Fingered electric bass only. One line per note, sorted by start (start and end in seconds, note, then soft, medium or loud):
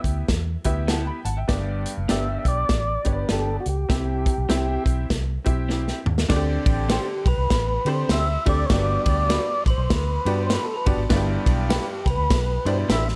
0.04 0.22 D2 medium
0.29 0.55 E2 medium
0.65 1.09 D2 medium
1.25 1.42 G#1 medium
1.49 1.84 G1 medium
1.97 2.06 F#1 medium
2.10 2.36 G1 medium
2.45 2.63 B1 loud
2.69 2.96 A1 medium
3.06 3.23 G1 medium
3.30 3.57 G1 medium
3.66 3.83 C#2 medium
3.90 4.25 C2 loud
4.38 4.47 B1 medium
4.49 4.76 C2 medium
4.86 5.03 B1 medium
5.10 5.37 C2 medium
5.47 5.91 B1 medium
6.06 6.23 D#2 medium
6.30 6.56 D2 loud
6.66 6.97 A1 medium
7.26 7.35 B1 medium
7.38 7.46 C2 medium
7.50 7.77 A1 loud
7.85 8.03 D3 medium
8.09 8.36 D2 medium
8.47 8.64 D2 medium
8.70 8.96 G1 loud
9.06 9.37 D2 medium
9.66 9.75 A1 medium
9.78 9.86 B1 loud
9.91 10.17 D2 loud
10.25 10.56 G2 loud
10.87 10.95 G1 medium
10.97 11.06 G#1 medium
11.10 11.36 G1 loud
11.46 11.77 B1 medium
12.06 12.14 C2 medium
12.17 12.26 D2 loud
12.30 12.57 B1 loud
12.65 12.83 G2 loud
12.89 13.16 A1 medium